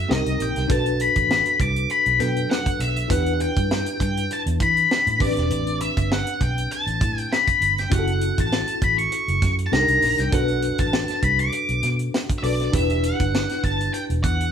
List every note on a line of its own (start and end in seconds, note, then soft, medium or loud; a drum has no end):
0.00 0.11 C#4 medium
0.00 0.11 E4 medium
0.00 0.11 F#4 medium
0.00 0.11 A4 medium
0.00 0.10 E5 medium
0.09 0.23 C2 medium
0.09 0.69 C4 medium
0.09 0.69 D#4 medium
0.09 0.70 G4 medium
0.09 0.70 A#4 medium
0.09 0.41 D#5 medium
0.09 snare loud
0.26 0.37 C2 medium
0.26 closed hi-hat soft
0.40 0.53 A#1 medium
0.40 0.71 G5 medium
0.40 closed hi-hat medium
0.56 0.68 C2 medium
0.56 snare soft
0.56 closed hi-hat soft
0.68 1.08 B1 medium
0.68 2.16 D4 medium
0.68 2.16 F#4 medium
0.68 2.17 A4 medium
0.68 2.17 B4 medium
0.68 kick loud
0.68 closed hi-hat medium
0.72 1.02 A5 medium
0.86 closed hi-hat soft
1.00 1.61 B5 loud
1.00 closed hi-hat medium
1.16 1.41 A1 medium
1.16 kick medium
1.16 closed hi-hat medium
1.31 snare loud
1.45 closed hi-hat soft
1.60 1.85 C2 medium
1.60 1.89 D6 medium
1.60 kick medium
1.60 closed hi-hat medium
1.76 closed hi-hat soft
1.90 2.21 B5 medium
1.90 closed hi-hat medium
2.06 2.18 B1 medium
2.06 closed hi-hat soft
2.19 2.45 B2 loud
2.19 3.10 F#3 soft
2.19 3.07 D4 soft
2.19 3.10 A4 soft
2.19 3.10 B4 medium
2.19 2.50 G5 medium
2.19 snare soft
2.19 closed hi-hat medium
2.36 closed hi-hat soft
2.50 2.81 F#5 medium
2.50 snare loud
2.66 kick medium
2.66 closed hi-hat soft
2.80 3.05 B1 medium
2.80 3.11 E5 medium
2.80 closed hi-hat medium
2.96 closed hi-hat soft
3.08 3.48 E2 medium
3.08 5.16 D4 medium
3.08 5.16 E4 medium
3.08 5.17 G4 medium
3.08 5.17 B4 medium
3.08 3.41 F#5 medium
3.08 kick loud
3.08 closed hi-hat medium
3.26 closed hi-hat soft
3.40 4.01 G5 medium
3.40 closed hi-hat medium
3.56 3.82 G2 medium
3.56 kick medium
3.56 closed hi-hat soft
3.71 snare medium
3.86 closed hi-hat medium
4.00 4.25 G2 medium
4.00 4.32 G5 medium
4.00 kick medium
4.00 closed hi-hat medium
4.17 closed hi-hat soft
4.31 4.41 A5 medium
4.31 closed hi-hat medium
4.46 4.58 E2 medium
4.46 closed hi-hat soft
4.60 4.85 E3 medium
4.60 5.24 B5 medium
4.60 kick medium
4.60 closed hi-hat medium
4.77 closed hi-hat soft
4.91 snare loud
5.07 5.18 A2 medium
5.07 closed hi-hat soft
5.19 5.34 A1 medium
5.19 7.57 C4 medium
5.19 7.57 D4 medium
5.19 7.57 G4 soft
5.19 7.58 B4 medium
5.19 5.77 D5 medium
5.19 kick loud
5.19 open hi-hat medium
5.37 5.48 E1 medium
5.37 snare soft
5.37 closed hi-hat soft
5.50 5.89 A1 loud
5.50 closed hi-hat medium
5.67 closed hi-hat soft
5.80 6.09 E5 medium
5.80 closed hi-hat medium
5.97 6.22 G1 medium
5.97 kick medium
5.97 closed hi-hat medium
6.12 6.42 F#5 medium
6.12 snare loud
6.26 closed hi-hat medium
6.41 6.66 B1 medium
6.41 6.72 G5 medium
6.41 kick medium
6.41 closed hi-hat medium
6.58 closed hi-hat soft
6.71 7.19 A5 medium
6.71 closed hi-hat medium
6.87 6.98 A1 medium
6.87 closed hi-hat soft
7.01 7.26 A2 medium
7.01 kick medium
7.01 closed hi-hat medium
7.18 7.34 G5 medium
7.18 closed hi-hat soft
7.32 7.80 B5 medium
7.32 snare medium
7.47 kick medium
7.47 closed hi-hat soft
7.61 7.86 G1 medium
7.61 closed hi-hat medium
7.78 7.93 G5 medium
7.78 snare soft
7.78 closed hi-hat soft
7.90 8.30 F#1 loud
7.90 9.68 C#4 medium
7.90 9.68 E4 medium
7.90 9.69 F#4 medium
7.90 7.99 G4 medium
7.90 8.40 F#5 medium
7.90 kick loud
7.90 closed hi-hat medium
7.99 9.72 A4 medium
8.07 closed hi-hat soft
8.21 closed hi-hat medium
8.38 8.63 A1 medium
8.38 8.84 A5 medium
8.38 kick medium
8.38 closed hi-hat soft
8.53 snare loud
8.67 closed hi-hat medium
8.82 9.07 A1 medium
8.82 8.98 B5 medium
8.82 kick medium
8.82 closed hi-hat medium
8.98 9.54 C#6 medium
8.98 closed hi-hat soft
9.12 closed hi-hat medium
9.28 9.40 F#1 medium
9.28 closed hi-hat soft
9.42 9.67 F#2 medium
9.42 kick medium
9.42 snare soft
9.42 closed hi-hat medium
9.58 closed hi-hat soft
9.67 9.73 A5 medium
9.72 9.86 C2 medium
9.72 10.30 D4 medium
9.72 10.32 D#4 medium
9.72 10.33 G4 medium
9.72 9.80 A4 medium
9.72 10.20 A#5 medium
9.72 snare loud
9.80 10.36 A#4 medium
9.88 10.00 C2 medium
9.88 closed hi-hat medium
10.02 10.16 A#1 medium
10.02 snare soft
10.02 open hi-hat medium
10.18 10.30 C2 medium
10.18 10.34 G5 medium
10.18 snare soft
10.18 closed hi-hat soft
10.31 10.71 B1 loud
10.31 12.39 D4 medium
10.31 12.39 F#4 medium
10.31 12.39 A4 medium
10.31 12.40 B4 medium
10.31 10.79 F#5 medium
10.31 kick loud
10.31 closed hi-hat medium
10.48 closed hi-hat soft
10.62 closed hi-hat medium
10.78 11.04 A1 medium
10.78 11.25 A5 medium
10.78 kick medium
10.78 closed hi-hat medium
10.93 snare loud
11.08 snare soft
11.08 closed hi-hat medium
11.22 11.48 C2 medium
11.22 11.40 B5 medium
11.22 kick medium
11.22 closed hi-hat medium
11.39 11.96 D6 medium
11.39 closed hi-hat soft
11.52 closed hi-hat medium
11.69 11.81 B1 medium
11.69 closed hi-hat soft
11.83 12.08 B2 medium
11.83 snare soft
11.83 closed hi-hat medium
11.99 closed hi-hat soft
12.14 snare medium
12.29 kick medium
12.29 closed hi-hat soft
12.38 12.43 E5 medium
12.42 12.68 B1 medium
12.42 12.71 D4 soft
12.42 12.73 F#4 soft
12.42 12.73 A4 soft
12.42 12.74 B4 soft
12.42 12.74 D5 medium
12.42 open hi-hat medium
12.60 snare soft
12.60 closed hi-hat soft
12.72 13.12 E1 loud
12.72 14.52 D4 medium
12.72 14.52 E4 medium
12.72 14.52 G4 medium
12.72 14.52 B4 medium
12.72 13.05 E5 medium
12.72 kick loud
12.72 closed hi-hat medium
12.89 closed hi-hat soft
13.03 13.64 F#5 loud
13.03 closed hi-hat medium
13.19 13.45 G1 medium
13.19 kick medium
13.19 closed hi-hat soft
13.35 snare medium
13.49 snare soft
13.49 closed hi-hat medium
13.63 13.88 G1 medium
13.63 13.93 A5 medium
13.63 kick medium
13.63 closed hi-hat medium
13.80 closed hi-hat soft
13.94 14.02 G5 medium
13.94 closed hi-hat medium
14.10 14.21 E1 medium
14.10 closed hi-hat soft
14.24 14.49 E2 medium
14.24 14.52 F#5 medium
14.24 kick medium
14.24 closed hi-hat medium
14.40 closed hi-hat soft